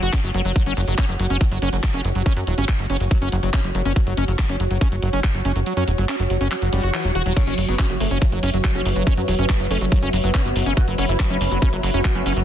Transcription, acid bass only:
0.03 0.13 F#4 medium
0.13 0.20 C#4 medium
0.24 0.31 F#3 medium
0.34 0.41 F#3 loud
0.45 0.52 F#3 medium
0.56 0.63 F#3 medium
0.66 0.73 C#4 loud
0.77 0.81 F#3 medium
0.88 0.95 F#3 medium
0.98 1.05 C#4 loud
1.09 1.13 F#3 medium
1.20 1.27 F#3 medium
1.30 1.37 C#4 loud
1.41 1.45 F#3 medium
1.51 1.58 F#3 medium
1.62 1.69 C#4 loud
1.73 1.77 F#3 medium
1.83 1.90 F#3 medium
1.94 2.01 C#4 loud
2.05 2.09 F#3 medium
2.15 2.22 F#3 medium
2.26 2.33 C#4 loud
2.37 2.41 F#3 medium
2.47 2.54 F#3 medium
2.58 2.65 C#4 loud
2.68 2.73 F#3 medium
2.79 2.86 F#3 medium
2.90 2.97 C#4 loud
3.00 3.05 F#3 medium
3.11 3.18 F#3 medium
3.22 3.29 C#4 loud
3.32 3.37 F#3 medium
3.43 3.50 F#3 medium
3.54 3.61 C#4 loud
3.64 3.68 F#3 medium
3.75 3.82 F#3 medium
3.85 3.92 C#4 loud
3.96 4.00 F#3 medium
4.07 4.14 F#3 medium
4.17 4.24 C#4 loud
4.28 4.32 F#3 medium
4.39 4.46 F#3 medium
4.49 4.56 C#4 loud
4.60 4.64 F#3 medium
4.71 4.78 F#3 medium
4.81 4.88 C#4 loud
4.92 4.96 F#3 medium
5.03 5.10 F#3 medium
5.13 5.20 C#4 loud
5.24 5.28 F#3 medium
5.34 5.41 F#3 medium
5.45 5.52 C#4 loud
5.56 5.60 F#3 medium
5.66 5.73 F#3 medium
5.77 5.84 C#4 loud
5.88 5.92 F#3 medium
5.98 6.05 F#3 medium
6.09 6.16 C#4 loud
6.20 6.24 F#3 medium
6.30 6.37 F#3 medium
6.41 6.48 C#4 loud
6.51 6.56 F#3 medium
6.62 6.69 F#3 medium
6.73 6.83 G3 medium
6.83 6.90 F#4 medium
6.94 7.04 E3 medium
7.05 7.12 F#3 medium
7.15 7.22 F#4 loud
7.26 7.33 F#3 loud
7.37 7.44 F#3 medium
7.47 7.54 C#4 loud
7.58 7.62 F#3 medium
7.68 7.75 F#3 medium
7.79 7.86 C#4 loud
7.90 7.94 F#3 medium
8.00 8.07 F#3 medium
8.11 8.18 C#4 loud
8.22 8.26 F#3 medium
8.32 8.39 F#3 medium
8.43 8.50 C#4 loud
8.54 8.58 F#3 medium
8.64 8.71 F#3 medium
8.75 8.82 C#4 loud
8.86 8.90 F#3 medium
8.96 9.03 F#3 medium
9.07 9.14 C#4 loud
9.17 9.22 F#3 medium
9.28 9.35 F#3 medium
9.39 9.46 C#4 loud
9.49 9.54 F#3 medium
9.60 9.67 F#3 medium
9.71 9.78 C#4 loud
9.81 9.85 F#3 medium
9.92 9.99 F#3 medium
10.03 10.10 C#4 loud
10.13 10.17 F#3 medium
10.24 10.31 F#3 medium
10.34 10.41 C#4 loud
10.45 10.49 F#3 medium
10.56 10.63 F#3 medium
10.66 10.73 C#4 loud
10.77 10.81 F#3 medium
10.88 10.95 F#3 medium
10.98 11.05 C#4 loud
11.09 11.13 F#3 medium
11.20 11.27 F#3 medium
11.30 11.37 C#4 loud
11.41 11.45 F#3 medium
11.51 11.58 F#3 medium
11.62 11.69 C#4 loud
11.73 11.77 F#3 medium
11.83 11.90 F#3 medium
11.94 12.01 C#4 loud
12.05 12.09 F#3 medium
12.15 12.22 F#3 medium
12.26 12.33 C#4 loud
12.37 12.41 F#3 medium

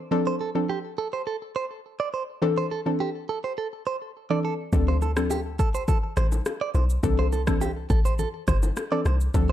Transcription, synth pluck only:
0.11 0.31 F3 loud
0.11 0.31 C4 medium
0.11 0.31 D4 medium
0.11 0.31 A4 loud
0.55 0.74 F3 medium
0.55 0.74 C4 medium
0.55 0.74 D4 medium
0.55 0.74 A4 medium
2.42 2.62 E3 loud
2.42 2.62 C4 medium
2.42 2.62 D4 medium
2.42 2.62 A4 loud
2.86 3.05 E3 medium
2.86 3.05 C4 medium
2.86 3.05 D4 medium
2.86 3.05 A4 medium
4.30 4.49 E3 medium
4.30 4.49 C4 medium
4.30 4.49 D4 medium
4.30 4.49 A4 medium
4.73 4.92 F3 loud
4.73 4.92 C4 medium
4.73 4.93 D4 medium
4.73 4.93 A4 loud
5.16 5.35 F3 medium
5.16 5.35 C4 medium
5.16 5.36 D4 medium
5.16 5.36 A4 medium
7.03 7.23 E3 medium
7.03 7.23 C4 medium
7.03 7.23 D4 medium
7.03 7.23 A4 loud
7.47 7.66 E3 medium
7.47 7.66 C4 medium
7.47 7.66 D4 medium
7.47 7.66 A4 medium
8.91 9.10 E3 medium
8.91 9.11 C4 medium
8.91 9.11 D4 medium
8.91 9.11 A4 medium
9.34 9.52 F3 loud
9.34 9.52 C4 medium
9.34 9.52 D4 medium
9.34 9.52 A4 loud

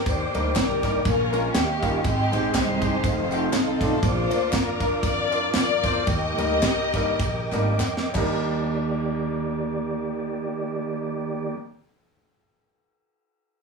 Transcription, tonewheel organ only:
0.06 1.05 A#4 medium
0.06 1.04 D5 medium
0.06 1.05 G5 medium
0.06 1.04 D6 medium
1.07 1.55 A#4 medium
1.07 1.54 F5 medium
1.07 1.55 G#5 medium
1.07 2.04 C#6 medium
1.55 2.04 G4 medium
1.55 2.03 D#5 medium
1.55 2.04 F5 medium
2.04 3.02 G#3 medium
2.04 4.00 D#5 medium
2.04 3.03 G5 medium
2.04 4.01 C6 medium
3.03 4.01 A4 medium
3.03 4.01 F5 medium
4.02 8.11 A#4 medium
4.02 6.05 D5 medium
4.02 6.05 F5 medium
4.02 8.11 D6 medium
6.06 8.13 D#5 medium
6.06 8.12 G5 medium
8.16 11.55 D#3 medium
8.16 11.56 A#3 medium
8.16 11.55 G4 medium
8.16 11.55 D5 medium

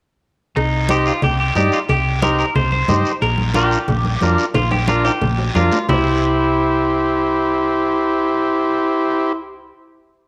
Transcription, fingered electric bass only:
0.57 1.10 C2 loud
1.23 1.49 C2 medium
1.56 1.69 G2 medium
1.89 2.42 C2 loud
2.55 2.82 C2 medium
2.89 3.02 G2 medium
3.22 3.75 A#1 loud
3.88 4.15 A#1 medium
4.22 4.35 F2 medium
4.55 5.08 A#1 loud
5.22 5.48 A#1 medium
5.55 5.68 F2 medium
5.89 9.70 C2 medium

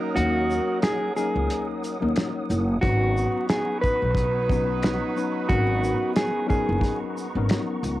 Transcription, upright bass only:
0.16 0.58 D#2 loud
1.36 1.47 C#2 medium
2.02 2.13 D#2 loud
2.50 2.76 F#1 loud
2.83 3.24 G#1 loud
4.02 4.98 B1 medium
5.50 5.91 G#1 loud
6.69 6.80 F#1 medium
7.35 7.47 G#1 medium
7.83 8.00 C#2 loud

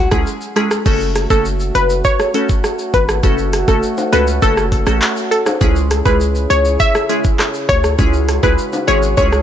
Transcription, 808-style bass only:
0.12 0.25 C#2 medium
0.86 1.27 F#1 loud
1.30 1.71 F#1 loud
1.75 2.02 F#1 medium
2.94 3.21 G#1 medium
3.23 3.64 F#1 loud
3.68 3.82 F#1 medium
4.13 4.40 C#2 medium
4.42 4.83 F#1 loud
4.87 5.00 A1 medium
5.61 6.02 C#2 loud
6.06 6.47 C#2 loud
6.50 6.77 C#2 medium
7.69 7.96 D2 medium
7.99 8.40 C#2 loud
8.43 8.57 C#2 loud
8.88 9.15 G#1 medium
9.18 9.42 C#2 loud

